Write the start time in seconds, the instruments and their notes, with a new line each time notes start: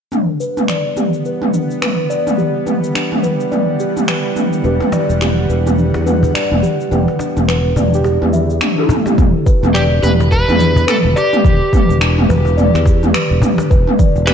0.12 synth drone E3 G3 B3 F#5, steel tongue drum D4, mid tom, shaker
0.40 steel tongue drum B4, shaker
0.57 mid tom, shaker
0.68 steel tongue drum D5, finger snap, shaker
0.97 steel tongue drum G4, mid tom, shaker
1.13 shaker
1.25 steel tongue drum B4, shaker
1.42 mid tom
1.54 steel tongue drum D4, shaker
1.71 shaker
1.82 steel tongue drum B4, finger snap, mid tom, shaker
2.10 steel tongue drum D5, shaker
2.27 mid tom, shaker
2.38 steel tongue drum G4, shaker
2.66 steel tongue drum B4, mid tom, shaker
2.84 shaker
2.95 steel tongue drum D4, finger snap, shaker
3.12 mid tom
3.23 steel tongue drum B4, shaker
3.40 shaker
3.52 steel tongue drum D5, mid tom, shaker
3.80 steel tongue drum G4, shaker
3.97 mid tom, shaker
4.08 steel tongue drum B4, finger snap, shaker
4.36 steel tongue drum D4, mid tom, shaker
4.53 shaker
4.62 fretless electric bass E1, synth stab E3 D4 G4, steel tongue drum B4, shaker
4.80 cajon slap, mid tom
4.92 steel tongue drum D5, cajon slap, shaker
5.09 fretless electric bass E1, shaker
5.21 steel tongue drum G4, finger snap, mid tom, shaker
5.49 fretless electric bass E1, steel tongue drum B4, shaker
5.65 synth stab E3 D4 G4, mid tom, shaker
5.78 steel tongue drum D4, shaker
5.94 fretless electric bass E2, cajon slap
6.04 synth stab E3 D4, steel tongue drum B4, mid tom, shaker
6.08 synth stab F#4
6.23 cajon bass, shaker
6.34 steel tongue drum D5, finger snap, shaker
6.51 fretless electric bass E1, mid tom
6.63 steel tongue drum G4, shaker
6.80 shaker
6.89 fretless electric bass E1, synth stab E3 D4 G4, steel tongue drum B4, mid tom, shaker
7.08 cajon slap
7.19 steel tongue drum D4, cajon slap, shaker
7.37 fretless electric bass E1, mid tom, shaker
7.48 steel tongue drum B4, finger snap, shaker
7.64 cajon slap
7.76 fretless electric bass E1, steel tongue drum D5, cajon bass, mid tom, shaker
7.90 synth stab E3 D4, shaker
7.94 synth stab G4
8.04 steel tongue drum G4, cajon slap, shaker
8.21 fretless electric bass E2, mid tom
8.33 steel tongue drum E5, shaker
8.50 shaker
8.61 steel tongue drum D4, finger snap, mid tom, shaker
8.76 synth stab E3 D4 A4, high tom
8.89 steel tongue drum E4, cajon bass, mid tom, shaker
9.06 steel tongue drum G4, cajon slap, mid tom, shaker
9.18 fretless electric bass E1, steel tongue drum D4, kick, mid tom, shaker
9.46 steel tongue drum B4, kick, shaker
9.63 fretless electric bass E1, mid tom, shaker
9.74 electric slide guitar G4, steel tongue drum D5, finger snap, shaker
10.03 fretless electric bass E1, steel tongue drum G4, electric slide guitar B4, mid tom, shaker
10.20 cajon slap, shaker
10.31 steel tongue drum B4, electric slide guitar B4, kick, shaker
10.48 fretless electric bass E2, mid tom, shaker
10.59 steel tongue drum D4, cajon slap, shaker
10.76 cajon bass, cajon slap, shaker
10.87 electric slide guitar A4, steel tongue drum B4, finger snap, mid tom, shaker
11.04 fretless electric bass E1
11.16 electric slide guitar G4, steel tongue drum D5, cajon slap, shaker
11.33 mid tom, shaker
11.44 fretless electric bass E1, steel tongue drum G4, kick, shaker
11.73 steel tongue drum B4, kick, mid tom, shaker
11.89 fretless electric bass E1, shaker
12.00 steel tongue drum D4, finger snap, shaker
12.18 mid tom
12.29 fretless electric bass E1, steel tongue drum B4, cajon bass, shaker
12.45 cajon slap, shaker
12.57 steel tongue drum D5, mid tom, shaker
12.74 fretless electric bass E2, finger snap, cajon slap, shaker
12.85 steel tongue drum G4, kick, cajon slap, shaker
13.03 mid tom, shaker
13.14 steel tongue drum B4, finger snap, shaker
13.31 fretless electric bass E1
13.42 steel tongue drum D4, cajon bass, cajon slap, mid tom, shaker
13.58 cajon slap, shaker
13.70 fretless electric bass E1, steel tongue drum B4, kick, shaker
13.87 mid tom
13.99 steel tongue drum D5, kick, shaker
14.16 fretless electric bass E1, shaker
14.27 steel tongue drum G4, electric slide guitar B4, finger snap, mid tom, shaker